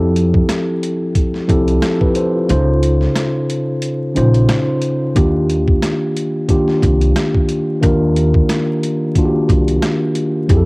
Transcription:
Already playing: F2 F3 C4 E4 G4 A4
0.16 closed hi-hat
0.34 kick
0.49 cross-stick, snare, closed hi-hat
0.83 closed hi-hat
1.15 kick, closed hi-hat
1.34 snare
1.48 C2 F3 C4 E4 G4 A4, kick, closed hi-hat
1.68 closed hi-hat
1.82 F4 A4, cross-stick, snare, closed hi-hat
2.01 G4 B4, kick
2.15 A4 C5, closed hi-hat
2.34 F4 A4
2.48 C#2 C#3 C#4 D#4 F4 C5, closed hi-hat
2.83 closed hi-hat
3.01 snare
3.16 cross-stick, snare, closed hi-hat
3.50 closed hi-hat
3.82 closed hi-hat
4.15 A#1 C#3 C#4 D#4 F4 C5, closed hi-hat
4.34 closed hi-hat
4.49 cross-stick, snare, closed hi-hat
4.82 closed hi-hat
5.15 D#2 D#3 A#3 D4 F4 G4, kick, closed hi-hat
5.50 closed hi-hat
5.68 kick
5.82 cross-stick, snare, closed hi-hat
6.17 closed hi-hat
6.48 D#3 A#3 D4 F4 G4, kick, closed hi-hat
6.68 snare
6.82 C2, kick, closed hi-hat
7.01 closed hi-hat
7.16 cross-stick, snare, closed hi-hat
7.34 kick
7.49 closed hi-hat
7.81 D#2 D#3 A#3 D4 F4 A#4, kick, closed hi-hat
8.16 closed hi-hat
8.34 kick
8.49 cross-stick, snare, closed hi-hat
8.83 closed hi-hat
9.15 D#3 A#3 D4 F4 F#4, kick, closed hi-hat
9.25 G4
9.49 C2, kick, closed hi-hat
9.68 closed hi-hat
9.82 cross-stick, snare, closed hi-hat
10.15 closed hi-hat
10.48 F2 F3 C4 E4 G4 G#4, kick, closed hi-hat
10.57 A4

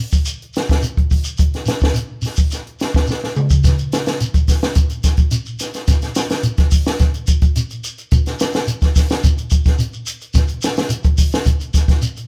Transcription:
0.12 kick, shekere
0.25 closed hi-hat, shekere
0.42 closed hi-hat
0.54 snare, closed hi-hat, shekere
0.68 kick, snare, closed hi-hat, shekere
0.82 closed hi-hat, shekere
0.97 kick, closed hi-hat
1.11 kick, open hi-hat, shekere
1.24 closed hi-hat, shekere
1.38 kick, closed hi-hat, shekere
1.54 snare, closed hi-hat
1.66 snare, closed hi-hat, shekere
1.80 kick, snare, shekere
1.94 closed hi-hat, shekere
2.22 snare, open hi-hat, shekere
2.36 kick, shekere
2.51 snare, closed hi-hat, shekere
2.67 closed hi-hat
2.79 snare, closed hi-hat, shekere
2.93 kick, snare, shekere
3.07 snare, shekere
3.24 snare
3.35 mid tom, shekere
3.50 kick, shekere
3.64 kick, snare, closed hi-hat, shekere
3.78 closed hi-hat, shekere
3.92 snare, closed hi-hat, shekere
4.06 snare, closed hi-hat, shekere
4.20 closed hi-hat, shekere
4.34 kick, closed hi-hat, shekere
4.48 kick, snare, open hi-hat, shekere
4.62 snare, closed hi-hat, shekere
4.75 kick, closed hi-hat, shekere
4.90 closed hi-hat, shekere
5.03 kick, snare, closed hi-hat, shekere
5.17 kick, closed hi-hat, shekere
5.31 closed hi-hat, shekere
5.46 shekere
5.59 snare, closed hi-hat, shekere
5.74 snare, closed hi-hat, shekere
5.87 kick, snare, closed hi-hat, shekere
6.02 snare, closed hi-hat, shekere
6.15 snare, closed hi-hat, shekere
6.29 snare, closed hi-hat, shekere
6.43 closed hi-hat, shekere
6.57 kick, snare, closed hi-hat, shekere
6.71 kick, open hi-hat, shekere
6.85 snare, shekere
6.99 kick, snare, closed hi-hat, shekere
7.14 closed hi-hat, shekere
7.27 kick, closed hi-hat, shekere
7.42 kick, closed hi-hat, shekere
7.56 closed hi-hat, shekere
7.70 closed hi-hat, shekere
7.84 closed hi-hat, shekere
7.98 closed hi-hat, shekere
8.11 kick, closed hi-hat, shekere
8.26 snare, closed hi-hat, shekere
8.39 snare, closed hi-hat, shekere
8.53 snare, closed hi-hat, shekere
8.67 closed hi-hat, shekere
8.81 kick, snare, closed hi-hat, shekere
8.96 kick, snare, open hi-hat, shekere
9.09 snare, closed hi-hat, shekere
9.23 kick, closed hi-hat, shekere
9.37 closed hi-hat, shekere
9.50 kick, closed hi-hat, shekere
9.65 kick, snare, closed hi-hat, shekere
9.79 closed hi-hat, shekere
9.93 shekere
10.06 closed hi-hat, shekere
10.21 closed hi-hat, shekere
10.34 kick, snare, closed hi-hat, shekere
10.48 closed hi-hat, shekere
10.62 snare, closed hi-hat, shekere
10.76 snare, closed hi-hat, shekere
10.89 closed hi-hat, shekere
11.03 kick, closed hi-hat, shekere
11.18 kick, open hi-hat, shekere
11.32 snare, shekere
11.45 kick, closed hi-hat, shekere
11.60 closed hi-hat, shekere
11.74 kick, snare, closed hi-hat, shekere
11.88 kick, snare, closed hi-hat, shekere
12.02 closed hi-hat, shekere
12.17 closed hi-hat, shekere

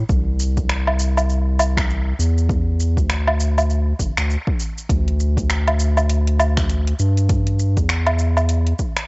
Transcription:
0.09 C2, kick, shaker
0.40 shaker
0.57 kick, shaker
0.69 finger snap, shaker
0.87 low woodblock
0.99 shaker
1.17 low woodblock, shaker
1.29 shaker
1.59 low woodblock, shaker
1.77 finger snap, kick, shaker
1.90 shaker
2.19 E2, shaker
2.38 shaker
2.49 kick, shaker
2.80 shaker
2.97 D2, kick, shaker
3.10 finger snap, shaker
3.28 low woodblock
3.40 shaker
3.58 low woodblock, shaker
3.70 shaker
3.99 G1, kick, shaker
4.17 D2, finger snap, shaker
4.30 shaker
4.47 kick
4.60 shaker
4.78 shaker
4.90 D2, kick, closed hi-hat, shaker
5.08 closed hi-hat
5.20 shaker
5.37 kick, closed hi-hat, shaker
5.50 finger snap, closed hi-hat, shaker
5.68 closed hi-hat, low woodblock
5.79 shaker
5.97 low woodblock, shaker
6.09 closed hi-hat, shaker
6.27 closed hi-hat
6.39 low woodblock, shaker
6.57 finger snap, kick, shaker
6.69 closed hi-hat, shaker
6.87 closed hi-hat
6.99 G2, shaker
7.17 closed hi-hat, shaker
7.29 kick, closed hi-hat, shaker
7.47 closed hi-hat
7.59 shaker
7.77 E2, kick, closed hi-hat, shaker
7.89 finger snap, closed hi-hat, shaker
8.06 closed hi-hat, low woodblock
8.19 shaker
8.37 low woodblock, shaker
8.49 closed hi-hat, shaker
8.67 closed hi-hat
8.79 kick, shaker
8.97 finger snap, shaker

